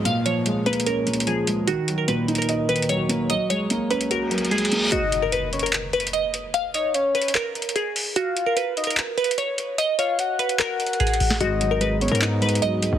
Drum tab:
HH |x-----x-----x-----x-x-x-x-----x-x-x-x-----x-----|x-----x-----x-----x-x-x-x-----x-x-x-x-----x-----|x-----x-----x-----x--x--x-----x-x-x-x-x-x-x-----|x-----x-----x-----x-x-x-x-----x-x-x-x-----x-----|
CP |------------------------------------------------|------------------------------------------------|------------------------------------------------|------------------------x-----------------------|
SD |------------------------------------------------|------------------------------------------------|------------------------------------------------|------------------------------------------------|
BD |------------------------------------------------|------------------------------------------------|------------------------------------------------|------------------------------------------------|

HH |x-----x-----x-----x-x-x-x-----x-x-x-x-----o-----|x-----x-----x-----x-x-x-x-----x-x-x-x-----x-----|x-----x-----x-----x--x--x-----x-x-x-x-x-x-o-----|x-----x-----x-----x-x-x-x-----x-x-x-x-----x-----|
CP |------------------------x-----------------------|------------------------x-----------------------|------------------------x-----------------------|------------------------x-----------------------|
SD |------------------------------------------------|------------------------------------------------|---------------------------------------------o--|------------------------------------------------|
BD |------------------------------------------------|------------------------------------------------|------------------------------------o-----o-----|------------------------------------------------|